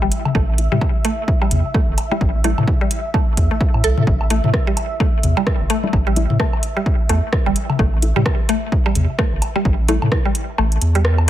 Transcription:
Already playing: synth texture E5
0.02 sub bass G1, synth arpeggio sound G3
0.12 closed hi-hat
0.25 high tom, high woodblock
0.35 sub bass A1, synth arpeggio sound A3, kick
0.58 synth stab E4 A4, closed hi-hat
0.72 sub bass A2, synth arpeggio sound G3, high tom
0.81 kick, high woodblock
1.05 synth arpeggio sound A3, closed hi-hat
1.28 kick
1.42 synth arpeggio sound G3, high woodblock
1.51 sub bass E2, closed hi-hat, high tom
1.74 synth arpeggio sound A3, kick
1.88 sub bass G1
1.98 closed hi-hat, high woodblock
2.11 synth arpeggio sound G3, synth stab E4 A4 E5, low conga
2.21 sub bass A1, kick
2.44 synth arpeggio sound A3, synth stab E4 A4 E5, closed hi-hat, low conga
2.58 sub bass A2, high tom, high woodblock
2.68 kick
2.81 synth arpeggio sound G3
2.91 closed hi-hat
3.14 synth arpeggio sound A3, kick, high woodblock
3.37 sub bass E2, kick, closed hi-hat
3.51 synth arpeggio sound A3
3.61 kick
3.74 sub bass A2, high woodblock
3.84 sub bass C2, synth arpeggio sound A4, closed hi-hat
3.97 sub bass A2, high tom
4.07 sub bass A1, kick
4.21 high woodblock
4.30 synth arpeggio sound A3, synth stab E4 A4, closed hi-hat
4.44 sub bass A2, high tom
4.54 kick, cross-stick
4.67 synth arpeggio sound G3
4.77 closed hi-hat, high woodblock
5.00 synth arpeggio sound A3, kick
5.23 sub bass E2, closed hi-hat, high tom
5.37 synth arpeggio sound G3, high woodblock
5.47 kick, cross-stick
5.60 sub bass G1
5.70 synth arpeggio sound A3, closed hi-hat
5.84 synth stab E4 A4 E5, low conga
5.93 sub bass A1, kick, high woodblock
6.07 synth arpeggio sound G3
6.16 synth stab E4 A4 E5, closed hi-hat, low conga
6.30 sub bass A2, high tom
6.40 synth arpeggio sound A3, kick, cross-stick
6.53 high woodblock
6.63 closed hi-hat
6.77 synth arpeggio sound G3
6.86 kick
7.09 sub bass E2, synth arpeggio sound A3, synth stab E4 A4 E5, closed hi-hat, high woodblock
7.33 kick, cross-stick
7.46 sub bass G1, synth arpeggio sound G3
7.56 closed hi-hat
7.70 high tom, high woodblock
7.79 sub bass A1, synth arpeggio sound A3, kick
8.02 synth stab E4 A4 E5, closed hi-hat
8.16 sub bass A2, synth arpeggio sound G3, high tom
8.26 kick, cross-stick, high woodblock
8.49 synth arpeggio sound A3, closed hi-hat
8.72 kick
8.86 synth arpeggio sound G3, high woodblock
8.95 sub bass E2, closed hi-hat, high tom
9.19 synth arpeggio sound A3, kick, cross-stick
9.32 sub bass G1
9.42 closed hi-hat, high woodblock
9.56 synth arpeggio sound G3, low conga
9.65 sub bass A1, kick
9.88 synth arpeggio sound A3, synth stab E4 A4 E5, closed hi-hat, low conga
10.02 sub bass A2, high tom, high woodblock
10.12 kick, cross-stick
10.25 synth arpeggio sound G3
10.35 closed hi-hat
10.58 sub bass A1, synth arpeggio sound A3, high woodblock
10.72 closed hi-hat
10.81 sub bass E2, closed hi-hat
10.95 synth arpeggio sound G3, closed hi-hat
11.05 cross-stick
11.18 high woodblock

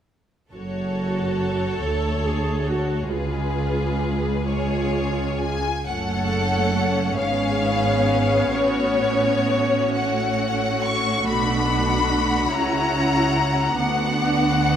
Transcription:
0.53 double bass section F#1, cello section F#2, viola section F#4, violin section A4 C#5
1.84 double bass section D2, cello section D2, viola section A4
2.26 viola section G#4
2.69 viola section F#4
3.09 double bass section C#2, cello section C#2, viola section F4, violin section G#4 B4
4.44 viola section F4, violin section G#4 C#5
5.42 violin section G#5
5.87 double bass section F#1, cello section F#2, viola section A3 C#4, violin section A4 C#5 F#5
7.18 double bass section G#1, cello section G#2, viola section B3, violin section G#4 F5
8.53 double bass section A1, cello section A2, violin section F#4 C#5
9.94 viola section A3, violin section F#5
10.83 violin section C#6
11.26 double bass section B1, cello section B2, viola section D4, violin section F#5 B5
12.52 double bass section C#2, cello section C#3, viola section C#4 E4, violin section A#5
13.78 double bass section D2, cello section D3, viola section B3 D4, violin section F#4 F#5

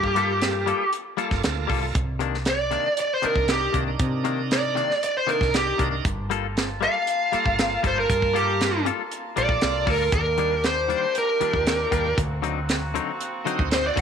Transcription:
Already playing: fretless electric bass G2, tonewheel organ A#3 F4 A4, lead electric guitar G4
0.04 kick
0.15 clean electric guitar G3 A#3 F4 A4, closed hi-hat
0.42 snare, closed hi-hat
0.66 clean electric guitar G3 A#3 F4 A4, closed hi-hat
0.93 closed hi-hat
1.17 clean electric guitar G3 A#3 F4 A4, tonewheel organ A#3 F4 A4, closed hi-hat
1.31 fretless electric bass G1, kick, snare
1.43 fretless electric bass D2, tonewheel organ A#3 F4 A4, snare, closed hi-hat
1.67 fretless electric bass C2, clean electric guitar G3 A#3 F4 A4, kick, open hi-hat
1.82 tonewheel organ A#3 F4 A4
1.95 fretless electric bass C2, kick, closed hi-hat
2.19 clean electric guitar C3 D#3 A#3 D4, closed hi-hat
2.34 snare
2.45 lead electric guitar D5, snare, closed hi-hat
2.71 clean electric guitar C3 D#3 A#3 D4, closed hi-hat
2.97 lead electric guitar D5, closed hi-hat
3.14 lead electric guitar C5
3.22 clean electric guitar C3 D#3 A#3 D4, tonewheel organ D4 D#4 A#4, lead electric guitar A#4, muted fretless electric bass stroke, closed hi-hat
3.36 fretless electric bass C2, kick
3.47 tonewheel organ D4 D#4 A#4, lead electric guitar G4, snare, closed hi-hat
3.73 fretless electric bass C2, clean electric guitar C3 D#3 A#3 D4, kick, closed hi-hat
3.87 tonewheel organ D4 D#4 A#4
3.99 fretless electric bass C3, kick, closed hi-hat
4.24 clean electric guitar C3 D#3 A#3 D4, closed hi-hat
4.51 lead electric guitar D5, snare, closed hi-hat
4.75 clean electric guitar C3 D#3 A#3 D4, closed hi-hat
4.91 snare
5.03 lead electric guitar D5, closed hi-hat
5.17 lead electric guitar C5
5.27 clean electric guitar C3 D#3 A#3 D4, tonewheel organ D4 D#4 A4, lead electric guitar A#4, closed hi-hat
5.41 fretless electric bass C2, kick, snare
5.53 tonewheel organ D4 D#4 A#4, snare, closed hi-hat
5.57 lead electric guitar G4
5.78 fretless electric bass C2, clean electric guitar C3 D#3 A#3 D4, kick, closed hi-hat
5.91 tonewheel organ D4 D#4 A#4
6.05 fretless electric bass G1, horn section A#3 F4 A5, kick, closed hi-hat
6.30 clean electric guitar G3 A#3 F4 A4, closed hi-hat
6.57 snare, closed hi-hat
6.81 clean electric guitar G3 A#3 F4 A4, lead electric guitar F5, closed hi-hat
7.07 closed hi-hat
7.32 clean electric guitar G3 A#3 F4 A4, tonewheel organ A#3 F4 A4, muted fretless electric bass stroke, closed hi-hat
7.46 fretless electric bass G1, kick
7.58 tonewheel organ A#3 F4 A4, snare, closed hi-hat
7.83 fretless electric bass G1, clean electric guitar G3 A#3 F4 A4, kick, closed hi-hat
7.87 lead electric guitar C5
7.96 tonewheel organ A#3 F4 A#4, lead electric guitar A#4
8.10 fretless electric bass G2, kick, closed hi-hat
8.22 kick
8.33 clean electric guitar G3 A#3 F4 A4, lead electric guitar G4, closed hi-hat
8.61 snare, closed hi-hat
8.85 clean electric guitar G3 A#3 F4 A4, closed hi-hat
9.11 closed hi-hat
9.36 fretless electric bass A#1, clean electric guitar G3 A#3 F4 A4, tonewheel organ A#3 F4 A4, lead electric guitar D5, closed hi-hat
9.49 kick
9.61 fretless electric bass C2, tonewheel organ A#3 F4 A4, snare, closed hi-hat
9.86 fretless electric bass D2, clean electric guitar G3 A#3 F4 A4, kick, open hi-hat
9.90 lead electric guitar A#4
9.99 tonewheel organ A#3 F4 A4
10.12 fretless electric bass D#2, horn section A#3 D4 G4, lead electric guitar A#4, kick, closed hi-hat
10.38 clean electric guitar D#3 G3 A#3 D4, closed hi-hat
10.64 lead electric guitar C5, snare, closed hi-hat
10.88 clean electric guitar D#3 G3 A#3 D4, closed hi-hat
11.15 lead electric guitar A#4, closed hi-hat
11.40 clean electric guitar D#3 G3 A#3 D4, tonewheel organ D4 F4 G4, muted fretless electric bass stroke, closed hi-hat
11.53 fretless electric bass D#2, kick
11.65 tonewheel organ D4 F4 G4, snare, closed hi-hat
11.91 fretless electric bass D#2, clean electric guitar D#3 G3 A#3 D4, kick, closed hi-hat
12.03 tonewheel organ D4 F4 G4
12.18 fretless electric bass D2, horn section C4 F#4, kick, closed hi-hat
12.42 clean electric guitar D3 F#3 C4 D#4, closed hi-hat
12.69 snare, closed hi-hat
12.94 clean electric guitar D3 F#3 C4 D#4, closed hi-hat
13.21 closed hi-hat
13.44 clean electric guitar D3 F#3 C4 D#4, tonewheel organ C4 D#4 F#4, closed hi-hat
13.59 fretless electric bass D2, kick
13.70 tonewheel organ C4 D#4 F#4, lead electric guitar C5, snare, closed hi-hat
13.87 lead electric guitar D5
13.96 fretless electric bass A1, clean electric guitar D3 F#3 C4 D#4, kick, closed hi-hat

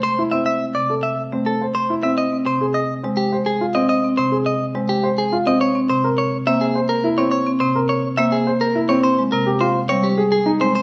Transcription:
0.03 clean electric guitar C5
0.19 grand piano E4
0.31 marimba C4, grand piano C4, clean electric guitar E5
0.46 clean electric guitar E5
0.75 marimba C3, clean electric guitar D5
0.90 grand piano A4
1.03 clean electric guitar E5
1.32 marimba A3, grand piano C4
1.46 clean electric guitar A4
1.62 grand piano C5
1.75 clean electric guitar C5
1.90 grand piano E4
2.03 marimba C4, grand piano C4, clean electric guitar E5
2.18 clean electric guitar D#5
2.32 marimba C4
2.46 marimba C3, clean electric guitar C5
2.61 grand piano G#4
2.74 clean electric guitar D#5
3.03 marimba G#3, grand piano C4
3.17 clean electric guitar G4
3.32 grand piano C5
3.46 clean electric guitar G#4
3.61 grand piano F4
3.75 grand piano C4, marimba C4, clean electric guitar D#5
3.89 clean electric guitar D#5
4.04 marimba C4
4.17 marimba C3, clean electric guitar C5
4.32 grand piano G#4
4.46 clean electric guitar D#5
4.75 marimba G#3, grand piano C4
4.89 clean electric guitar G4
5.03 grand piano C5
5.18 clean electric guitar G#4
5.32 grand piano F4
5.46 grand piano C4, marimba C4, clean electric guitar D#5
5.61 clean electric guitar C#5
5.75 marimba C4
5.90 marimba C3, clean electric guitar C5
6.04 grand piano A#4
6.18 clean electric guitar C#5
6.47 marimba A#3, grand piano C4, clean electric guitar E5
6.61 clean electric guitar G#4
6.75 grand piano C5
6.89 clean electric guitar A#4
7.04 grand piano E4
7.18 grand piano C4, marimba C4, clean electric guitar C#5
7.31 clean electric guitar C#5
7.46 marimba C4
7.60 marimba C3, clean electric guitar C5
7.75 grand piano A#4
7.89 clean electric guitar C#5
8.17 marimba A#3, grand piano C4, clean electric guitar E5
8.32 clean electric guitar G#4
8.47 grand piano C5
8.61 clean electric guitar A#4
8.75 grand piano E4
8.89 grand piano C4, marimba C4, clean electric guitar C#5
9.03 clean electric guitar C5
9.19 marimba G#3
9.32 marimba C3, clean electric guitar A#4
9.46 grand piano G4
9.61 grand piano F4, clean electric guitar C5
9.89 marimba G3, grand piano C4, clean electric guitar C#5
10.03 clean electric guitar G4
10.18 grand piano G#4
10.32 clean electric guitar G#4
10.46 grand piano D#4
10.61 marimba G#3, grand piano C4, clean electric guitar C5
10.75 clean electric guitar C5

